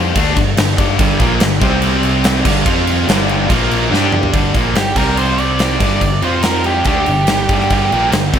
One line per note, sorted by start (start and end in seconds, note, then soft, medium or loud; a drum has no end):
0.00 0.11 F2 loud
0.00 0.14 F3 medium
0.00 0.15 C4 medium
0.00 0.15 F4 loud
0.15 0.35 D2 loud
0.15 0.35 D3 loud
0.15 0.36 A3 loud
0.15 0.36 D4 loud
0.15 kick loud
0.15 crash medium
0.36 0.56 G1 medium
0.36 0.53 G2 medium
0.36 0.53 D3 medium
0.36 kick medium
0.36 crash medium
0.57 0.77 G1 medium
0.57 0.74 G2 medium
0.57 0.74 D3 medium
0.57 snare loud
0.57 crash medium
0.77 0.98 G1 loud
0.77 0.97 G2 loud
0.77 0.98 D3 loud
0.77 0.98 G3 loud
0.77 kick loud
0.77 crash medium
0.98 1.18 G1 loud
0.98 1.19 G2 loud
0.98 1.18 D3 loud
0.98 1.19 G3 loud
0.98 kick loud
0.98 crash medium
1.19 1.39 A#1 loud
1.19 1.39 A#2 medium
1.19 1.40 F3 loud
1.19 1.40 A#3 loud
1.19 kick loud
1.19 crash medium
1.39 1.60 G1 medium
1.39 1.56 G2 medium
1.39 1.56 D3 medium
1.39 snare loud
1.39 crash medium
1.60 2.41 C2 loud
1.60 2.44 C3 medium
1.60 2.44 G3 loud
1.60 2.45 C4 loud
1.60 kick loud
1.60 crash medium
1.82 crash medium
2.03 crash medium
2.24 snare loud
2.24 crash medium
2.43 2.64 G1 loud
2.43 2.64 G2 medium
2.43 2.64 D3 medium
2.43 2.65 G3 loud
2.43 kick loud
2.43 crash loud
2.64 3.05 F2 loud
2.64 3.06 F3 medium
2.64 3.07 C4 loud
2.64 3.07 F4 loud
2.64 kick loud
2.64 crash medium
2.87 crash medium
3.07 3.47 G1 loud
3.07 3.49 G2 loud
3.07 3.47 D3 loud
3.07 3.48 G3 loud
3.07 snare loud
3.07 crash medium
3.29 crash medium
3.47 3.89 A#1 loud
3.47 3.90 A#2 medium
3.47 3.90 F3 loud
3.47 3.91 A#3 loud
3.47 kick loud
3.47 crash medium
3.71 crash medium
3.90 4.31 G2 loud
3.90 4.32 G3 medium
3.90 4.33 D4 loud
3.90 4.33 G4 loud
3.90 snare medium
4.12 mid tom medium
4.23 floor tom medium
4.33 4.53 G1 medium
4.33 4.54 G2 loud
4.33 4.53 D3 loud
4.33 4.53 G3 loud
4.33 kick loud
4.33 crash medium
4.53 4.73 A#1 medium
4.53 4.74 A#2 medium
4.53 4.75 F3 medium
4.53 4.75 A#3 loud
4.53 kick medium
4.53 crash medium
4.74 4.94 G1 medium
4.74 4.92 G2 medium
4.74 4.92 D3 medium
4.74 4.96 G4 medium
4.74 snare loud
4.74 crash medium
4.96 5.77 C2 medium
4.96 5.80 C3 medium
4.96 5.80 G3 medium
4.96 5.81 C4 medium
4.96 5.18 A#4 medium
4.96 kick loud
4.96 crash medium
5.17 5.40 C5 medium
5.17 crash medium
5.38 6.21 D5 medium
5.38 crash medium
5.59 snare loud
5.59 crash medium
5.80 6.00 G1 medium
5.80 6.00 G2 medium
5.80 6.01 D3 medium
5.80 6.02 G3 loud
5.80 kick loud
5.80 crash medium
6.01 6.21 G1 medium
6.01 6.19 G2 medium
6.01 6.19 D3 medium
6.01 kick medium
6.01 crash medium
6.22 6.82 F2 medium
6.22 6.85 F3 medium
6.22 6.86 C4 medium
6.22 6.86 F4 loud
6.22 6.44 C5 medium
6.22 crash medium
6.42 6.64 A#4 medium
6.42 snare loud
6.42 crash medium
6.64 6.86 G4 medium
6.64 crash medium
6.84 7.05 D2 loud
6.84 7.06 D3 medium
6.84 7.07 A3 loud
6.84 7.07 D4 loud
6.84 8.09 G4 medium
6.84 kick loud
6.84 crash medium
7.06 7.27 G1 medium
7.06 7.24 G2 medium
7.06 7.25 D3 medium
7.06 crash medium
7.27 7.48 G1 medium
7.27 7.45 G2 medium
7.27 7.45 D3 medium
7.27 snare loud
7.27 crash medium
7.49 7.69 G1 medium
7.49 7.69 G2 medium
7.49 7.70 D3 loud
7.49 7.70 G3 medium
7.49 kick loud
7.49 crash medium
7.60 snare soft
7.70 7.90 G1 medium
7.70 7.91 G2 medium
7.70 7.90 D3 loud
7.70 7.90 G3 loud
7.70 kick loud
7.70 crash medium
7.90 8.12 A#1 loud
7.90 8.11 A#2 medium
7.90 8.12 F3 loud
7.90 8.12 A#3 loud
7.90 crash medium
8.12 8.32 G1 medium
8.12 8.29 G2 medium
8.12 8.29 D3 medium
8.12 snare loud
8.12 crash medium
8.33 8.39 C2 medium
8.33 8.39 C3 medium
8.33 8.39 G3 medium
8.33 8.39 C4 loud
8.33 kick loud
8.33 crash medium